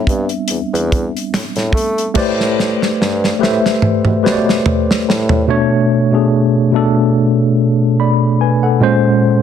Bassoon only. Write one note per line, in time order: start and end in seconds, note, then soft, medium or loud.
0.08 0.27 G2 medium
0.50 0.59 E2 soft
0.73 1.08 E2 loud
1.33 1.42 A2 soft
1.56 1.72 A2 medium
1.73 2.09 A3 medium
2.16 2.88 A2 loud
3.00 3.35 G2 loud
3.42 3.61 A2 medium
4.06 4.13 B2 soft
4.25 4.60 B2 medium
5.08 5.44 A2 medium